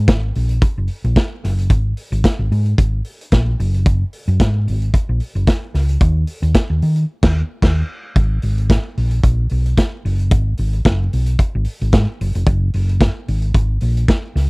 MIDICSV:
0, 0, Header, 1, 3, 480
1, 0, Start_track
1, 0, Tempo, 538600
1, 1514, Time_signature, 4, 2, 24, 8
1, 12921, End_track
2, 0, Start_track
2, 0, Title_t, "Fingered electric bass"
2, 0, Program_c, 0, 33
2, 75, Note_on_c, 0, 32, 79
2, 268, Note_off_c, 0, 32, 0
2, 322, Note_on_c, 0, 34, 86
2, 513, Note_off_c, 0, 34, 0
2, 692, Note_on_c, 0, 30, 77
2, 779, Note_off_c, 0, 30, 0
2, 930, Note_on_c, 0, 34, 88
2, 1018, Note_off_c, 0, 34, 0
2, 1287, Note_on_c, 0, 30, 87
2, 1520, Note_off_c, 0, 30, 0
2, 1520, Note_on_c, 0, 32, 94
2, 1712, Note_off_c, 0, 32, 0
2, 1890, Note_on_c, 0, 32, 105
2, 1977, Note_off_c, 0, 32, 0
2, 2131, Note_on_c, 0, 32, 91
2, 2218, Note_off_c, 0, 32, 0
2, 2243, Note_on_c, 0, 44, 100
2, 2433, Note_off_c, 0, 44, 0
2, 2484, Note_on_c, 0, 32, 87
2, 2674, Note_off_c, 0, 32, 0
2, 2964, Note_on_c, 0, 34, 88
2, 3154, Note_off_c, 0, 34, 0
2, 3205, Note_on_c, 0, 30, 107
2, 3589, Note_off_c, 0, 30, 0
2, 3811, Note_on_c, 0, 42, 92
2, 3898, Note_off_c, 0, 42, 0
2, 3924, Note_on_c, 0, 44, 82
2, 4168, Note_on_c, 0, 32, 83
2, 4181, Note_off_c, 0, 44, 0
2, 4356, Note_off_c, 0, 32, 0
2, 4538, Note_on_c, 0, 34, 90
2, 4622, Note_off_c, 0, 34, 0
2, 4770, Note_on_c, 0, 30, 86
2, 4858, Note_off_c, 0, 30, 0
2, 5120, Note_on_c, 0, 37, 80
2, 5311, Note_off_c, 0, 37, 0
2, 5358, Note_on_c, 0, 39, 110
2, 5550, Note_off_c, 0, 39, 0
2, 5724, Note_on_c, 0, 39, 106
2, 5814, Note_off_c, 0, 39, 0
2, 5970, Note_on_c, 0, 39, 79
2, 6058, Note_off_c, 0, 39, 0
2, 6084, Note_on_c, 0, 51, 86
2, 6274, Note_off_c, 0, 51, 0
2, 6448, Note_on_c, 0, 39, 98
2, 6606, Note_off_c, 0, 39, 0
2, 6799, Note_on_c, 0, 39, 80
2, 6962, Note_off_c, 0, 39, 0
2, 7274, Note_on_c, 0, 32, 109
2, 7468, Note_off_c, 0, 32, 0
2, 7515, Note_on_c, 0, 32, 82
2, 7810, Note_off_c, 0, 32, 0
2, 8000, Note_on_c, 0, 34, 79
2, 8191, Note_off_c, 0, 34, 0
2, 8232, Note_on_c, 0, 34, 85
2, 8426, Note_off_c, 0, 34, 0
2, 8478, Note_on_c, 0, 35, 81
2, 8670, Note_off_c, 0, 35, 0
2, 8957, Note_on_c, 0, 30, 89
2, 9193, Note_off_c, 0, 30, 0
2, 9193, Note_on_c, 0, 32, 103
2, 9386, Note_off_c, 0, 32, 0
2, 9437, Note_on_c, 0, 32, 86
2, 9629, Note_off_c, 0, 32, 0
2, 9676, Note_on_c, 0, 30, 89
2, 9868, Note_off_c, 0, 30, 0
2, 9923, Note_on_c, 0, 35, 81
2, 10113, Note_off_c, 0, 35, 0
2, 10293, Note_on_c, 0, 32, 95
2, 10379, Note_off_c, 0, 32, 0
2, 10529, Note_on_c, 0, 32, 90
2, 10617, Note_off_c, 0, 32, 0
2, 10635, Note_on_c, 0, 44, 94
2, 10737, Note_off_c, 0, 44, 0
2, 10881, Note_on_c, 0, 30, 105
2, 10981, Note_off_c, 0, 30, 0
2, 11007, Note_on_c, 0, 29, 90
2, 11095, Note_off_c, 0, 29, 0
2, 11114, Note_on_c, 0, 30, 110
2, 11308, Note_off_c, 0, 30, 0
2, 11356, Note_on_c, 0, 30, 83
2, 11652, Note_off_c, 0, 30, 0
2, 11839, Note_on_c, 0, 32, 94
2, 12031, Note_off_c, 0, 32, 0
2, 12075, Note_on_c, 0, 32, 86
2, 12268, Note_off_c, 0, 32, 0
2, 12316, Note_on_c, 0, 34, 85
2, 12509, Note_off_c, 0, 34, 0
2, 12793, Note_on_c, 0, 37, 85
2, 12921, Note_off_c, 0, 37, 0
2, 12921, End_track
3, 0, Start_track
3, 0, Title_t, "Drums"
3, 70, Note_on_c, 9, 36, 114
3, 72, Note_on_c, 9, 42, 71
3, 76, Note_on_c, 9, 38, 118
3, 160, Note_off_c, 9, 36, 0
3, 161, Note_off_c, 9, 42, 0
3, 165, Note_off_c, 9, 38, 0
3, 314, Note_on_c, 9, 46, 65
3, 403, Note_off_c, 9, 46, 0
3, 436, Note_on_c, 9, 42, 47
3, 525, Note_off_c, 9, 42, 0
3, 552, Note_on_c, 9, 36, 110
3, 555, Note_on_c, 9, 42, 58
3, 641, Note_off_c, 9, 36, 0
3, 644, Note_off_c, 9, 42, 0
3, 779, Note_on_c, 9, 46, 46
3, 868, Note_off_c, 9, 46, 0
3, 930, Note_on_c, 9, 42, 49
3, 1019, Note_off_c, 9, 42, 0
3, 1032, Note_on_c, 9, 42, 58
3, 1035, Note_on_c, 9, 36, 90
3, 1042, Note_on_c, 9, 38, 104
3, 1121, Note_off_c, 9, 42, 0
3, 1124, Note_off_c, 9, 36, 0
3, 1131, Note_off_c, 9, 38, 0
3, 1280, Note_on_c, 9, 38, 39
3, 1288, Note_on_c, 9, 46, 67
3, 1369, Note_off_c, 9, 38, 0
3, 1377, Note_off_c, 9, 46, 0
3, 1412, Note_on_c, 9, 42, 48
3, 1501, Note_off_c, 9, 42, 0
3, 1515, Note_on_c, 9, 36, 114
3, 1516, Note_on_c, 9, 42, 55
3, 1604, Note_off_c, 9, 36, 0
3, 1605, Note_off_c, 9, 42, 0
3, 1754, Note_on_c, 9, 46, 62
3, 1843, Note_off_c, 9, 46, 0
3, 1891, Note_on_c, 9, 42, 45
3, 1981, Note_off_c, 9, 42, 0
3, 1997, Note_on_c, 9, 36, 101
3, 2001, Note_on_c, 9, 42, 68
3, 2005, Note_on_c, 9, 38, 113
3, 2086, Note_off_c, 9, 36, 0
3, 2090, Note_off_c, 9, 42, 0
3, 2094, Note_off_c, 9, 38, 0
3, 2245, Note_on_c, 9, 46, 58
3, 2334, Note_off_c, 9, 46, 0
3, 2367, Note_on_c, 9, 42, 43
3, 2457, Note_off_c, 9, 42, 0
3, 2480, Note_on_c, 9, 36, 109
3, 2486, Note_on_c, 9, 42, 59
3, 2569, Note_off_c, 9, 36, 0
3, 2575, Note_off_c, 9, 42, 0
3, 2713, Note_on_c, 9, 46, 51
3, 2802, Note_off_c, 9, 46, 0
3, 2861, Note_on_c, 9, 42, 48
3, 2950, Note_off_c, 9, 42, 0
3, 2954, Note_on_c, 9, 42, 61
3, 2960, Note_on_c, 9, 36, 94
3, 2964, Note_on_c, 9, 38, 94
3, 3043, Note_off_c, 9, 42, 0
3, 3049, Note_off_c, 9, 36, 0
3, 3054, Note_off_c, 9, 38, 0
3, 3207, Note_on_c, 9, 46, 64
3, 3297, Note_off_c, 9, 46, 0
3, 3334, Note_on_c, 9, 42, 52
3, 3423, Note_off_c, 9, 42, 0
3, 3440, Note_on_c, 9, 36, 122
3, 3441, Note_on_c, 9, 42, 58
3, 3529, Note_off_c, 9, 36, 0
3, 3530, Note_off_c, 9, 42, 0
3, 3678, Note_on_c, 9, 46, 65
3, 3767, Note_off_c, 9, 46, 0
3, 3817, Note_on_c, 9, 42, 47
3, 3906, Note_off_c, 9, 42, 0
3, 3921, Note_on_c, 9, 36, 109
3, 3927, Note_on_c, 9, 42, 68
3, 3931, Note_on_c, 9, 38, 110
3, 4010, Note_off_c, 9, 36, 0
3, 4016, Note_off_c, 9, 42, 0
3, 4020, Note_off_c, 9, 38, 0
3, 4169, Note_on_c, 9, 46, 57
3, 4258, Note_off_c, 9, 46, 0
3, 4293, Note_on_c, 9, 42, 44
3, 4382, Note_off_c, 9, 42, 0
3, 4400, Note_on_c, 9, 36, 110
3, 4409, Note_on_c, 9, 42, 63
3, 4490, Note_off_c, 9, 36, 0
3, 4498, Note_off_c, 9, 42, 0
3, 4633, Note_on_c, 9, 46, 52
3, 4722, Note_off_c, 9, 46, 0
3, 4778, Note_on_c, 9, 42, 43
3, 4867, Note_off_c, 9, 42, 0
3, 4874, Note_on_c, 9, 42, 67
3, 4879, Note_on_c, 9, 36, 96
3, 4885, Note_on_c, 9, 38, 87
3, 4964, Note_off_c, 9, 42, 0
3, 4968, Note_off_c, 9, 36, 0
3, 4974, Note_off_c, 9, 38, 0
3, 5117, Note_on_c, 9, 38, 42
3, 5124, Note_on_c, 9, 46, 65
3, 5206, Note_off_c, 9, 38, 0
3, 5214, Note_off_c, 9, 46, 0
3, 5247, Note_on_c, 9, 42, 52
3, 5336, Note_off_c, 9, 42, 0
3, 5354, Note_on_c, 9, 42, 61
3, 5355, Note_on_c, 9, 36, 122
3, 5443, Note_off_c, 9, 42, 0
3, 5444, Note_off_c, 9, 36, 0
3, 5588, Note_on_c, 9, 46, 61
3, 5677, Note_off_c, 9, 46, 0
3, 5728, Note_on_c, 9, 42, 46
3, 5818, Note_off_c, 9, 42, 0
3, 5833, Note_on_c, 9, 42, 69
3, 5834, Note_on_c, 9, 36, 105
3, 5837, Note_on_c, 9, 38, 113
3, 5922, Note_off_c, 9, 42, 0
3, 5923, Note_off_c, 9, 36, 0
3, 5926, Note_off_c, 9, 38, 0
3, 6078, Note_on_c, 9, 46, 66
3, 6168, Note_off_c, 9, 46, 0
3, 6199, Note_on_c, 9, 42, 43
3, 6288, Note_off_c, 9, 42, 0
3, 6442, Note_on_c, 9, 36, 107
3, 6443, Note_on_c, 9, 49, 88
3, 6449, Note_on_c, 9, 38, 117
3, 6531, Note_off_c, 9, 36, 0
3, 6532, Note_off_c, 9, 49, 0
3, 6538, Note_off_c, 9, 38, 0
3, 6794, Note_on_c, 9, 36, 100
3, 6797, Note_on_c, 9, 49, 74
3, 6803, Note_on_c, 9, 38, 93
3, 6883, Note_off_c, 9, 36, 0
3, 6886, Note_off_c, 9, 49, 0
3, 6892, Note_off_c, 9, 38, 0
3, 7271, Note_on_c, 9, 36, 112
3, 7271, Note_on_c, 9, 42, 50
3, 7360, Note_off_c, 9, 36, 0
3, 7360, Note_off_c, 9, 42, 0
3, 7504, Note_on_c, 9, 46, 60
3, 7593, Note_off_c, 9, 46, 0
3, 7644, Note_on_c, 9, 42, 46
3, 7733, Note_off_c, 9, 42, 0
3, 7751, Note_on_c, 9, 36, 109
3, 7755, Note_on_c, 9, 42, 68
3, 7759, Note_on_c, 9, 38, 127
3, 7840, Note_off_c, 9, 36, 0
3, 7844, Note_off_c, 9, 42, 0
3, 7848, Note_off_c, 9, 38, 0
3, 7997, Note_on_c, 9, 46, 71
3, 8086, Note_off_c, 9, 46, 0
3, 8116, Note_on_c, 9, 42, 43
3, 8205, Note_off_c, 9, 42, 0
3, 8230, Note_on_c, 9, 36, 116
3, 8235, Note_on_c, 9, 42, 62
3, 8319, Note_off_c, 9, 36, 0
3, 8324, Note_off_c, 9, 42, 0
3, 8460, Note_on_c, 9, 46, 52
3, 8550, Note_off_c, 9, 46, 0
3, 8606, Note_on_c, 9, 42, 45
3, 8695, Note_off_c, 9, 42, 0
3, 8708, Note_on_c, 9, 42, 65
3, 8711, Note_on_c, 9, 36, 95
3, 8718, Note_on_c, 9, 38, 97
3, 8797, Note_off_c, 9, 42, 0
3, 8801, Note_off_c, 9, 36, 0
3, 8807, Note_off_c, 9, 38, 0
3, 8960, Note_on_c, 9, 46, 73
3, 9049, Note_off_c, 9, 46, 0
3, 9082, Note_on_c, 9, 42, 51
3, 9171, Note_off_c, 9, 42, 0
3, 9188, Note_on_c, 9, 42, 60
3, 9191, Note_on_c, 9, 36, 126
3, 9277, Note_off_c, 9, 42, 0
3, 9280, Note_off_c, 9, 36, 0
3, 9423, Note_on_c, 9, 46, 63
3, 9512, Note_off_c, 9, 46, 0
3, 9563, Note_on_c, 9, 42, 47
3, 9652, Note_off_c, 9, 42, 0
3, 9671, Note_on_c, 9, 36, 115
3, 9673, Note_on_c, 9, 42, 66
3, 9677, Note_on_c, 9, 38, 126
3, 9760, Note_off_c, 9, 36, 0
3, 9762, Note_off_c, 9, 42, 0
3, 9766, Note_off_c, 9, 38, 0
3, 9917, Note_on_c, 9, 46, 69
3, 10006, Note_off_c, 9, 46, 0
3, 10036, Note_on_c, 9, 42, 48
3, 10125, Note_off_c, 9, 42, 0
3, 10151, Note_on_c, 9, 36, 105
3, 10158, Note_on_c, 9, 42, 62
3, 10240, Note_off_c, 9, 36, 0
3, 10247, Note_off_c, 9, 42, 0
3, 10377, Note_on_c, 9, 46, 56
3, 10467, Note_off_c, 9, 46, 0
3, 10528, Note_on_c, 9, 42, 44
3, 10617, Note_off_c, 9, 42, 0
3, 10625, Note_on_c, 9, 42, 60
3, 10631, Note_on_c, 9, 36, 102
3, 10635, Note_on_c, 9, 38, 106
3, 10714, Note_off_c, 9, 42, 0
3, 10721, Note_off_c, 9, 36, 0
3, 10724, Note_off_c, 9, 38, 0
3, 10880, Note_on_c, 9, 46, 68
3, 10969, Note_off_c, 9, 46, 0
3, 11006, Note_on_c, 9, 42, 49
3, 11095, Note_off_c, 9, 42, 0
3, 11109, Note_on_c, 9, 42, 56
3, 11110, Note_on_c, 9, 36, 127
3, 11198, Note_off_c, 9, 42, 0
3, 11199, Note_off_c, 9, 36, 0
3, 11349, Note_on_c, 9, 46, 71
3, 11438, Note_off_c, 9, 46, 0
3, 11488, Note_on_c, 9, 42, 46
3, 11577, Note_off_c, 9, 42, 0
3, 11591, Note_on_c, 9, 36, 112
3, 11594, Note_on_c, 9, 42, 72
3, 11597, Note_on_c, 9, 38, 122
3, 11680, Note_off_c, 9, 36, 0
3, 11683, Note_off_c, 9, 42, 0
3, 11686, Note_off_c, 9, 38, 0
3, 11836, Note_on_c, 9, 46, 65
3, 11926, Note_off_c, 9, 46, 0
3, 11958, Note_on_c, 9, 42, 45
3, 12048, Note_off_c, 9, 42, 0
3, 12071, Note_on_c, 9, 36, 115
3, 12079, Note_on_c, 9, 42, 70
3, 12160, Note_off_c, 9, 36, 0
3, 12168, Note_off_c, 9, 42, 0
3, 12302, Note_on_c, 9, 46, 58
3, 12392, Note_off_c, 9, 46, 0
3, 12449, Note_on_c, 9, 42, 48
3, 12538, Note_off_c, 9, 42, 0
3, 12549, Note_on_c, 9, 42, 65
3, 12552, Note_on_c, 9, 36, 100
3, 12560, Note_on_c, 9, 38, 98
3, 12638, Note_off_c, 9, 42, 0
3, 12641, Note_off_c, 9, 36, 0
3, 12649, Note_off_c, 9, 38, 0
3, 12795, Note_on_c, 9, 38, 42
3, 12803, Note_on_c, 9, 46, 66
3, 12884, Note_off_c, 9, 38, 0
3, 12892, Note_off_c, 9, 46, 0
3, 12921, End_track
0, 0, End_of_file